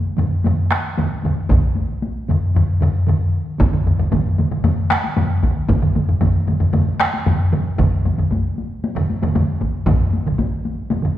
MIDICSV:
0, 0, Header, 1, 2, 480
1, 0, Start_track
1, 0, Tempo, 523104
1, 1377, Time_signature, 4, 2, 24, 8
1, 10255, End_track
2, 0, Start_track
2, 0, Title_t, "Taiko and cinematic ensemble drums"
2, 43, Note_on_c, 9, 48, 18
2, 135, Note_off_c, 9, 48, 0
2, 164, Note_on_c, 9, 47, 86
2, 165, Note_on_c, 9, 48, 45
2, 168, Note_on_c, 9, 45, 83
2, 256, Note_off_c, 9, 47, 0
2, 257, Note_off_c, 9, 48, 0
2, 260, Note_off_c, 9, 45, 0
2, 288, Note_on_c, 9, 48, 16
2, 380, Note_off_c, 9, 48, 0
2, 407, Note_on_c, 9, 48, 58
2, 414, Note_on_c, 9, 47, 73
2, 422, Note_on_c, 9, 45, 81
2, 498, Note_off_c, 9, 48, 0
2, 506, Note_off_c, 9, 47, 0
2, 514, Note_off_c, 9, 45, 0
2, 530, Note_on_c, 9, 48, 18
2, 622, Note_off_c, 9, 48, 0
2, 649, Note_on_c, 9, 37, 58
2, 652, Note_on_c, 9, 48, 43
2, 659, Note_off_c, 9, 37, 0
2, 659, Note_on_c, 9, 37, 64
2, 743, Note_off_c, 9, 48, 0
2, 751, Note_off_c, 9, 37, 0
2, 895, Note_on_c, 9, 48, 56
2, 900, Note_on_c, 9, 47, 94
2, 904, Note_on_c, 9, 45, 86
2, 987, Note_off_c, 9, 48, 0
2, 992, Note_off_c, 9, 47, 0
2, 996, Note_off_c, 9, 45, 0
2, 1011, Note_on_c, 9, 48, 19
2, 1103, Note_off_c, 9, 48, 0
2, 1133, Note_on_c, 9, 48, 42
2, 1145, Note_on_c, 9, 47, 84
2, 1146, Note_on_c, 9, 45, 78
2, 1225, Note_off_c, 9, 48, 0
2, 1237, Note_off_c, 9, 45, 0
2, 1237, Note_off_c, 9, 47, 0
2, 1252, Note_on_c, 9, 48, 17
2, 1344, Note_off_c, 9, 48, 0
2, 1370, Note_on_c, 9, 48, 57
2, 1375, Note_on_c, 9, 41, 93
2, 1380, Note_on_c, 9, 47, 85
2, 1385, Note_on_c, 9, 45, 83
2, 1462, Note_off_c, 9, 48, 0
2, 1467, Note_off_c, 9, 41, 0
2, 1471, Note_off_c, 9, 47, 0
2, 1477, Note_off_c, 9, 45, 0
2, 1499, Note_on_c, 9, 48, 21
2, 1591, Note_off_c, 9, 48, 0
2, 1610, Note_on_c, 9, 48, 46
2, 1702, Note_off_c, 9, 48, 0
2, 1731, Note_on_c, 9, 48, 20
2, 1823, Note_off_c, 9, 48, 0
2, 1856, Note_on_c, 9, 48, 52
2, 1948, Note_off_c, 9, 48, 0
2, 1981, Note_on_c, 9, 48, 19
2, 2073, Note_off_c, 9, 48, 0
2, 2096, Note_on_c, 9, 47, 79
2, 2099, Note_on_c, 9, 48, 45
2, 2110, Note_on_c, 9, 45, 80
2, 2188, Note_off_c, 9, 47, 0
2, 2191, Note_off_c, 9, 48, 0
2, 2202, Note_off_c, 9, 45, 0
2, 2218, Note_on_c, 9, 48, 19
2, 2309, Note_off_c, 9, 48, 0
2, 2338, Note_on_c, 9, 47, 77
2, 2353, Note_on_c, 9, 45, 88
2, 2430, Note_off_c, 9, 47, 0
2, 2445, Note_off_c, 9, 45, 0
2, 2576, Note_on_c, 9, 47, 87
2, 2589, Note_on_c, 9, 45, 91
2, 2668, Note_off_c, 9, 47, 0
2, 2680, Note_off_c, 9, 45, 0
2, 2816, Note_on_c, 9, 47, 81
2, 2829, Note_on_c, 9, 45, 77
2, 2908, Note_off_c, 9, 47, 0
2, 2921, Note_off_c, 9, 45, 0
2, 3292, Note_on_c, 9, 47, 69
2, 3302, Note_on_c, 9, 41, 104
2, 3302, Note_on_c, 9, 48, 62
2, 3315, Note_on_c, 9, 45, 68
2, 3384, Note_off_c, 9, 47, 0
2, 3394, Note_off_c, 9, 41, 0
2, 3394, Note_off_c, 9, 48, 0
2, 3407, Note_off_c, 9, 45, 0
2, 3423, Note_on_c, 9, 47, 63
2, 3426, Note_on_c, 9, 48, 21
2, 3432, Note_on_c, 9, 45, 62
2, 3515, Note_off_c, 9, 47, 0
2, 3517, Note_off_c, 9, 48, 0
2, 3524, Note_off_c, 9, 45, 0
2, 3544, Note_on_c, 9, 47, 62
2, 3550, Note_on_c, 9, 45, 64
2, 3635, Note_off_c, 9, 47, 0
2, 3641, Note_off_c, 9, 45, 0
2, 3665, Note_on_c, 9, 45, 74
2, 3665, Note_on_c, 9, 47, 73
2, 3666, Note_on_c, 9, 48, 22
2, 3757, Note_off_c, 9, 45, 0
2, 3757, Note_off_c, 9, 47, 0
2, 3758, Note_off_c, 9, 48, 0
2, 3777, Note_on_c, 9, 47, 87
2, 3782, Note_on_c, 9, 41, 68
2, 3784, Note_on_c, 9, 45, 89
2, 3787, Note_on_c, 9, 48, 62
2, 3869, Note_off_c, 9, 47, 0
2, 3874, Note_off_c, 9, 41, 0
2, 3875, Note_off_c, 9, 45, 0
2, 3879, Note_off_c, 9, 48, 0
2, 3908, Note_on_c, 9, 48, 21
2, 4000, Note_off_c, 9, 48, 0
2, 4022, Note_on_c, 9, 45, 65
2, 4027, Note_on_c, 9, 47, 61
2, 4029, Note_on_c, 9, 48, 57
2, 4114, Note_off_c, 9, 45, 0
2, 4119, Note_off_c, 9, 47, 0
2, 4120, Note_off_c, 9, 48, 0
2, 4143, Note_on_c, 9, 45, 69
2, 4149, Note_on_c, 9, 48, 22
2, 4154, Note_on_c, 9, 47, 58
2, 4235, Note_off_c, 9, 45, 0
2, 4241, Note_off_c, 9, 48, 0
2, 4245, Note_off_c, 9, 47, 0
2, 4257, Note_on_c, 9, 45, 94
2, 4261, Note_on_c, 9, 48, 69
2, 4275, Note_on_c, 9, 47, 92
2, 4348, Note_off_c, 9, 45, 0
2, 4353, Note_off_c, 9, 48, 0
2, 4367, Note_off_c, 9, 47, 0
2, 4387, Note_on_c, 9, 48, 22
2, 4478, Note_off_c, 9, 48, 0
2, 4500, Note_on_c, 9, 37, 71
2, 4500, Note_on_c, 9, 48, 53
2, 4512, Note_off_c, 9, 37, 0
2, 4512, Note_on_c, 9, 37, 71
2, 4592, Note_off_c, 9, 48, 0
2, 4604, Note_off_c, 9, 37, 0
2, 4624, Note_on_c, 9, 48, 53
2, 4716, Note_off_c, 9, 48, 0
2, 4739, Note_on_c, 9, 48, 65
2, 4742, Note_on_c, 9, 45, 91
2, 4748, Note_on_c, 9, 47, 94
2, 4831, Note_off_c, 9, 48, 0
2, 4834, Note_off_c, 9, 45, 0
2, 4840, Note_off_c, 9, 47, 0
2, 4866, Note_on_c, 9, 48, 22
2, 4958, Note_off_c, 9, 48, 0
2, 4980, Note_on_c, 9, 41, 69
2, 4984, Note_on_c, 9, 48, 52
2, 4986, Note_on_c, 9, 45, 82
2, 4989, Note_on_c, 9, 47, 85
2, 5072, Note_off_c, 9, 41, 0
2, 5075, Note_off_c, 9, 48, 0
2, 5078, Note_off_c, 9, 45, 0
2, 5081, Note_off_c, 9, 47, 0
2, 5106, Note_on_c, 9, 48, 22
2, 5197, Note_off_c, 9, 48, 0
2, 5217, Note_on_c, 9, 41, 89
2, 5217, Note_on_c, 9, 48, 72
2, 5226, Note_on_c, 9, 45, 63
2, 5230, Note_on_c, 9, 47, 65
2, 5308, Note_off_c, 9, 41, 0
2, 5308, Note_off_c, 9, 48, 0
2, 5318, Note_off_c, 9, 45, 0
2, 5322, Note_off_c, 9, 47, 0
2, 5341, Note_on_c, 9, 45, 68
2, 5343, Note_on_c, 9, 48, 25
2, 5348, Note_on_c, 9, 47, 66
2, 5433, Note_off_c, 9, 45, 0
2, 5435, Note_off_c, 9, 48, 0
2, 5440, Note_off_c, 9, 47, 0
2, 5467, Note_on_c, 9, 45, 65
2, 5468, Note_on_c, 9, 48, 56
2, 5472, Note_on_c, 9, 47, 66
2, 5559, Note_off_c, 9, 45, 0
2, 5560, Note_off_c, 9, 48, 0
2, 5563, Note_off_c, 9, 47, 0
2, 5586, Note_on_c, 9, 45, 71
2, 5591, Note_on_c, 9, 47, 64
2, 5591, Note_on_c, 9, 48, 21
2, 5677, Note_off_c, 9, 45, 0
2, 5683, Note_off_c, 9, 47, 0
2, 5683, Note_off_c, 9, 48, 0
2, 5698, Note_on_c, 9, 41, 63
2, 5701, Note_on_c, 9, 45, 85
2, 5704, Note_on_c, 9, 48, 67
2, 5713, Note_on_c, 9, 47, 93
2, 5790, Note_off_c, 9, 41, 0
2, 5793, Note_off_c, 9, 45, 0
2, 5795, Note_off_c, 9, 48, 0
2, 5804, Note_off_c, 9, 47, 0
2, 5829, Note_on_c, 9, 48, 22
2, 5921, Note_off_c, 9, 48, 0
2, 5941, Note_on_c, 9, 45, 71
2, 5946, Note_on_c, 9, 48, 58
2, 5952, Note_on_c, 9, 47, 64
2, 6032, Note_off_c, 9, 45, 0
2, 6038, Note_off_c, 9, 48, 0
2, 6044, Note_off_c, 9, 47, 0
2, 6057, Note_on_c, 9, 45, 74
2, 6066, Note_on_c, 9, 48, 22
2, 6072, Note_on_c, 9, 47, 59
2, 6149, Note_off_c, 9, 45, 0
2, 6158, Note_off_c, 9, 48, 0
2, 6163, Note_off_c, 9, 47, 0
2, 6175, Note_on_c, 9, 45, 91
2, 6181, Note_on_c, 9, 48, 65
2, 6187, Note_on_c, 9, 47, 85
2, 6267, Note_off_c, 9, 45, 0
2, 6273, Note_off_c, 9, 48, 0
2, 6278, Note_off_c, 9, 47, 0
2, 6308, Note_on_c, 9, 48, 21
2, 6400, Note_off_c, 9, 48, 0
2, 6419, Note_on_c, 9, 37, 68
2, 6423, Note_on_c, 9, 48, 45
2, 6430, Note_off_c, 9, 37, 0
2, 6430, Note_on_c, 9, 37, 72
2, 6515, Note_off_c, 9, 48, 0
2, 6522, Note_off_c, 9, 37, 0
2, 6549, Note_on_c, 9, 48, 46
2, 6640, Note_off_c, 9, 48, 0
2, 6665, Note_on_c, 9, 47, 102
2, 6665, Note_on_c, 9, 48, 61
2, 6667, Note_on_c, 9, 45, 98
2, 6756, Note_off_c, 9, 47, 0
2, 6756, Note_off_c, 9, 48, 0
2, 6758, Note_off_c, 9, 45, 0
2, 6793, Note_on_c, 9, 48, 19
2, 6885, Note_off_c, 9, 48, 0
2, 6905, Note_on_c, 9, 47, 93
2, 6909, Note_on_c, 9, 45, 88
2, 6914, Note_on_c, 9, 48, 45
2, 6996, Note_off_c, 9, 47, 0
2, 7001, Note_off_c, 9, 45, 0
2, 7006, Note_off_c, 9, 48, 0
2, 7029, Note_on_c, 9, 48, 19
2, 7120, Note_off_c, 9, 48, 0
2, 7142, Note_on_c, 9, 45, 93
2, 7144, Note_on_c, 9, 41, 89
2, 7151, Note_on_c, 9, 47, 97
2, 7152, Note_on_c, 9, 48, 55
2, 7234, Note_off_c, 9, 45, 0
2, 7236, Note_off_c, 9, 41, 0
2, 7243, Note_off_c, 9, 47, 0
2, 7244, Note_off_c, 9, 48, 0
2, 7277, Note_on_c, 9, 48, 20
2, 7369, Note_off_c, 9, 48, 0
2, 7389, Note_on_c, 9, 47, 67
2, 7390, Note_on_c, 9, 45, 68
2, 7397, Note_on_c, 9, 48, 47
2, 7481, Note_off_c, 9, 47, 0
2, 7482, Note_off_c, 9, 45, 0
2, 7489, Note_off_c, 9, 48, 0
2, 7506, Note_on_c, 9, 47, 69
2, 7510, Note_on_c, 9, 45, 72
2, 7518, Note_on_c, 9, 48, 20
2, 7598, Note_off_c, 9, 47, 0
2, 7602, Note_off_c, 9, 45, 0
2, 7609, Note_off_c, 9, 48, 0
2, 7623, Note_on_c, 9, 41, 62
2, 7636, Note_on_c, 9, 48, 59
2, 7715, Note_off_c, 9, 41, 0
2, 7727, Note_off_c, 9, 48, 0
2, 7758, Note_on_c, 9, 48, 20
2, 7850, Note_off_c, 9, 48, 0
2, 7872, Note_on_c, 9, 48, 49
2, 7964, Note_off_c, 9, 48, 0
2, 7993, Note_on_c, 9, 48, 20
2, 8085, Note_off_c, 9, 48, 0
2, 8110, Note_on_c, 9, 48, 65
2, 8202, Note_off_c, 9, 48, 0
2, 8222, Note_on_c, 9, 47, 89
2, 8224, Note_on_c, 9, 45, 96
2, 8229, Note_on_c, 9, 48, 21
2, 8314, Note_off_c, 9, 47, 0
2, 8316, Note_off_c, 9, 45, 0
2, 8321, Note_off_c, 9, 48, 0
2, 8348, Note_on_c, 9, 48, 52
2, 8440, Note_off_c, 9, 48, 0
2, 8462, Note_on_c, 9, 47, 93
2, 8467, Note_on_c, 9, 48, 54
2, 8470, Note_on_c, 9, 45, 92
2, 8554, Note_off_c, 9, 47, 0
2, 8559, Note_off_c, 9, 48, 0
2, 8561, Note_off_c, 9, 45, 0
2, 8581, Note_on_c, 9, 48, 63
2, 8582, Note_on_c, 9, 47, 94
2, 8585, Note_on_c, 9, 45, 92
2, 8673, Note_off_c, 9, 48, 0
2, 8674, Note_off_c, 9, 47, 0
2, 8677, Note_off_c, 9, 45, 0
2, 8706, Note_on_c, 9, 48, 22
2, 8797, Note_off_c, 9, 48, 0
2, 8817, Note_on_c, 9, 41, 69
2, 8821, Note_on_c, 9, 48, 48
2, 8909, Note_off_c, 9, 41, 0
2, 8913, Note_off_c, 9, 48, 0
2, 8941, Note_on_c, 9, 48, 23
2, 9033, Note_off_c, 9, 48, 0
2, 9052, Note_on_c, 9, 41, 99
2, 9054, Note_on_c, 9, 47, 94
2, 9057, Note_on_c, 9, 48, 66
2, 9066, Note_on_c, 9, 45, 94
2, 9144, Note_off_c, 9, 41, 0
2, 9146, Note_off_c, 9, 47, 0
2, 9148, Note_off_c, 9, 48, 0
2, 9157, Note_off_c, 9, 45, 0
2, 9174, Note_on_c, 9, 48, 25
2, 9265, Note_off_c, 9, 48, 0
2, 9296, Note_on_c, 9, 48, 56
2, 9388, Note_off_c, 9, 48, 0
2, 9414, Note_on_c, 9, 48, 22
2, 9419, Note_on_c, 9, 47, 68
2, 9425, Note_on_c, 9, 45, 72
2, 9506, Note_off_c, 9, 48, 0
2, 9511, Note_off_c, 9, 47, 0
2, 9516, Note_off_c, 9, 45, 0
2, 9531, Note_on_c, 9, 41, 72
2, 9532, Note_on_c, 9, 48, 70
2, 9623, Note_off_c, 9, 41, 0
2, 9624, Note_off_c, 9, 48, 0
2, 9658, Note_on_c, 9, 48, 22
2, 9750, Note_off_c, 9, 48, 0
2, 9772, Note_on_c, 9, 48, 53
2, 9864, Note_off_c, 9, 48, 0
2, 9895, Note_on_c, 9, 48, 22
2, 9987, Note_off_c, 9, 48, 0
2, 10004, Note_on_c, 9, 47, 58
2, 10004, Note_on_c, 9, 48, 70
2, 10019, Note_on_c, 9, 45, 62
2, 10095, Note_off_c, 9, 48, 0
2, 10096, Note_off_c, 9, 47, 0
2, 10111, Note_off_c, 9, 45, 0
2, 10115, Note_on_c, 9, 47, 67
2, 10129, Note_on_c, 9, 48, 21
2, 10144, Note_on_c, 9, 45, 63
2, 10207, Note_off_c, 9, 47, 0
2, 10221, Note_off_c, 9, 48, 0
2, 10236, Note_off_c, 9, 45, 0
2, 10255, End_track
0, 0, End_of_file